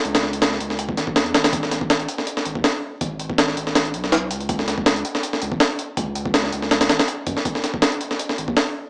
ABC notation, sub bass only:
X:1
M:4/4
L:1/16
Q:"Swing 16ths" 1/4=162
K:G#m
V:1 name="Sub bass" clef=bass
C,,6 C,,4 G,,,2 E,,2 G,,,2- | G,,,6 z4 G,,, D,, z4 | G,,,6 G,,,4 B,,,4 C,,2- | C,,6 z4 C,, G,,, z4 |
C,,6 C,,4 G,,, z3 F,, z | z8 z2 G,,, D,, z4 |]